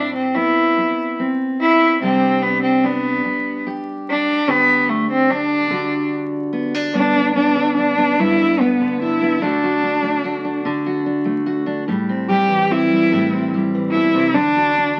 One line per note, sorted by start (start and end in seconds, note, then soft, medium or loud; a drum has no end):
0.00 0.76 A2 medium
0.00 1.18 C4 medium
0.00 0.14 D4 medium
0.15 0.37 C4 medium
0.35 1.96 B3 medium
0.35 1.18 E4 medium
0.77 muted steel-string acoustic guitar stroke medium
1.19 1.97 C4 medium
1.61 1.99 E4 loud
2.01 3.23 C3 medium
2.01 6.94 G3 medium
2.01 2.44 C4 medium
2.01 2.83 D4 medium
2.01 3.65 G4 medium
2.42 2.62 B3 medium
2.63 2.87 C4 medium
2.84 3.67 B3 medium
2.84 5.30 D4 medium
3.25 muted steel-string acoustic guitar stroke medium
3.67 4.44 G4 medium
4.10 4.51 D4 medium
4.48 5.69 D3 medium
4.48 4.91 B3 loud
4.48 5.67 G4 medium
4.89 5.10 A3 medium
5.11 5.32 C4 medium
5.30 5.67 D4 medium
5.30 6.13 D4 medium
5.70 7.54 D3 medium
5.70 6.90 F#4 medium
6.53 6.74 B3 medium
6.74 6.95 D4 medium
6.94 8.18 G2 medium
6.94 7.34 B3 medium
6.94 7.33 D4 loud
7.16 7.77 D4 medium
7.35 7.97 B3 medium
7.35 7.74 D4 medium
7.55 8.79 D3 medium
7.77 8.21 D4 loud
7.77 8.39 D4 medium
7.98 8.18 B3 medium
8.19 9.37 G2 medium
8.19 8.60 B3 medium
8.19 8.62 E4 loud
8.41 9.01 D4 medium
8.60 9.01 B3 medium
8.60 9.21 B3 medium
8.80 9.40 D3 medium
9.02 9.38 D4 medium
9.02 9.43 E4 medium
9.22 9.38 B3 medium
9.42 10.64 D3 medium
9.42 10.02 A3 medium
9.42 10.66 D4 loud
9.42 9.82 D4 medium
9.42 9.62 F#4 medium
9.63 10.23 F#4 medium
9.83 10.43 D4 medium
10.03 11.25 A3 medium
10.24 10.85 F#4 medium
10.45 10.65 D4 medium
10.65 11.89 D3 medium
10.65 11.05 D4 medium
10.86 11.45 F#4 medium
11.06 11.65 D4 medium
11.25 11.88 A3 medium
11.46 11.83 F#4 medium
11.66 11.83 D4 medium
11.88 13.11 A2 medium
11.88 12.28 G3 medium
12.09 12.69 C4 medium
12.29 12.89 G3 medium
12.29 12.72 G4 loud
12.49 13.73 E3 medium
12.70 13.31 C4 medium
12.70 13.54 E4 loud
12.90 13.12 G3 medium
13.12 13.94 A2 medium
13.12 13.53 G3 medium
13.33 14.31 C4 medium
13.54 14.36 G3 medium
13.74 14.31 E3 medium
13.91 14.14 B2 medium
13.91 14.35 E4 loud
14.14 14.36 C3 medium
14.34 15.00 D3 medium
14.34 15.00 D4 loud
14.34 14.78 D4 medium
14.56 15.00 F#4 medium
14.78 15.00 D4 medium